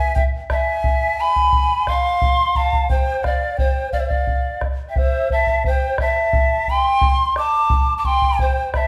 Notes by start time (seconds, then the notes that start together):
Already playing: E5 G#5
0.15 E5 G5, bombo low
0.50 E5 A5, bombo rim, bombo low
0.56 G#5
0.84 bombo low
1.19 G#5 B5
1.36 bombo low
1.53 bombo low
1.87 F5 C6, bombo rim, bombo low
2.22 bombo low
2.55 F5 A5, bombo low
2.73 bombo low
2.89 C5 G5, bombo low
3.24 D5 F5, bombo rim, bombo low
3.57 C5 G5, bombo low
3.92 D5 F5, bombo low
4.00 C5 E5
4.06 D5 F5
4.10 bombo low
4.27 bombo low
4.61 bombo rim, bombo low
4.89 E5 G5
4.96 C5 E5, bombo low
5.30 E5 A5, bombo low
5.47 bombo low
5.64 C5, bombo low
5.68 G5
5.98 E5 A5, bombo rim, bombo low
6.33 bombo low
6.67 G5 C6, bombo low
7.01 bombo low
7.36 A5 D6, bombo rim
7.70 bombo low
7.98 A5 D6
8.04 G5 C6, bombo low
8.22 bombo low
8.39 C5 G5, bombo low
8.74 E5 A5 B5, bombo rim, bombo low